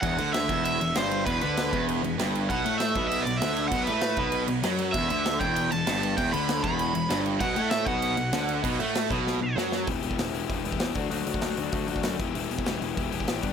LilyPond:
<<
  \new Staff \with { instrumentName = "Overdriven electric guitar" } { \time 4/4 \key e \minor \tempo 4 = 195 fis''4 e''4 e''4 c''4 | b'8 b'4. r2 | fis''4 e''4 e''8 d''8 e''4 | fis''8 b'2 r4. |
e''8 e''4 g''8 g''8 a''4. | g''8 b''4 b''2 r8 | fis''4 e''8 fis''2~ fis''8~ | fis''2. r4 |
r1 | r1 | r1 | }
  \new Staff \with { instrumentName = "Distorted electric guitar" } { \time 4/4 \key e \minor e,8 d4 e,4 e,8 g,4 | e,8 d4 e,4 e,8 g,4 | b,8 a4 b,4 b,8 d4 | b,8 a4 b,4 b,8 fis4 |
e,8 d4 e,4 e,8 g,4 | e,8 d4 e,4 e,8 g,4 | b,8 a4 b,4 b,8 d4 | b,8 a4 b,4 b,8 fis4 |
<e b e' g'>8 <e b e' g'>8 <e b e' g'>8 <e b e' g'>8 <e b e' g'>8 <e b e' g'>8 <e b e' g'>8 <d fis a d' fis'>8 | <d fis a d' fis'>8 <d fis a d' fis'>8 <d fis a d' fis'>8 <d fis a d' fis'>8 <d fis a d' fis'>8 <d fis a d' fis'>8 <d fis a d' fis'>8 <e b e' g'>8 | <e b e' g'>8 <e b e' g'>8 <e b e' g'>8 <e b e' g'>8 <e b e' g'>8 <e b e' g'>8 <e b e' g'>8 <g b d' g'>8 | }
  \new Staff \with { instrumentName = "Distorted electric guitar" } { \clef bass \time 4/4 \key e \minor e,8 d4 e,4 e,8 g,4 | e,8 d4 e,4 e,8 g,4 | b,8 a4 b,4 b,8 d4 | b,8 a4 b,4 b,8 fis4 |
e,8 d4 e,4 e,8 g,4 | e,8 d4 e,4 e,8 g,4 | b,8 a4 b,4 b,8 d4 | b,8 a4 b,4 b,8 fis4 |
r1 | r1 | r1 | }
  \new Staff \with { instrumentName = "Picked electric bass" } { \clef bass \time 4/4 \key e \minor e,,8 d,4 e,,4 e,,8 g,,4 | e,,8 d,4 e,,4 e,,8 g,,4 | b,,8 a,4 b,,4 b,,8 d,4 | b,,8 a,4 b,,4 b,,8 fis,4 |
e,,8 d,4 e,,4 e,,8 g,,4 | e,,8 d,4 e,,4 e,,8 g,,4 | b,,8 a,4 b,,4 b,,8 d,4 | b,,8 a,4 b,,4 b,,8 fis,4 |
e,,8 e,,8 e,,8 e,,8 e,,8 e,,8 e,8 d,8 | d,8 d,8 d,8 d,8 d,8 d,8 fis,8 e,,8 | e,,8 e,,8 e,,8 e,,8 e,,8 e,,8 a,,8 g,,8 | }
  \new DrumStaff \with { instrumentName = "Drums" } \drummode { \time 4/4 <cymc bd>8 cymc8 <cymc sn>8 <cymc bd>8 cymc8 cymc8 <cymc sn>8 cymc8 | <cymc bd>8 cymc8 <cymc sn>8 <cymc bd>8 cymc8 cymc8 <cymc sn>8 cymc8 | <cymc bd>8 cymc8 <cymc sn>8 <cymc bd>8 cymc8 cymc8 <cymc sn>8 cymc8 | <cymc bd>8 cymc8 <cymc sn>8 <cymc bd>8 cymc8 cymc8 <cymc sn>8 cymc8 |
<cymc bd>8 cymc8 <cymc sn>8 <cymc bd>8 cymc8 cymc8 <cymc sn>8 cymc8 | <cymc bd>8 cymc8 <cymc sn>8 <cymc bd>8 cymc8 cymc8 <cymc sn>8 cymc8 | <cymc bd>8 cymc8 <cymc sn>8 <cymc bd>8 cymc8 cymc8 <cymc sn>8 cymc8 | <cymc bd>8 cymc8 <cymc sn>8 <cymc bd>8 sn4 sn8 sn8 |
<hho bd>8 hho16 bd16 <hho sn>8 hho8 <hho bd>8 hho16 bd16 <hho sn>8 <hho bd>8 | hho8 hho16 bd16 <hho sn>8 hho8 <hho bd>8 hho16 bd16 <hho sn>8 <hho bd>8 | hho8 hho16 bd16 <hho sn>8 hho8 <hho bd>8 hho16 bd16 <hho sn>8 <hho bd>8 | }
>>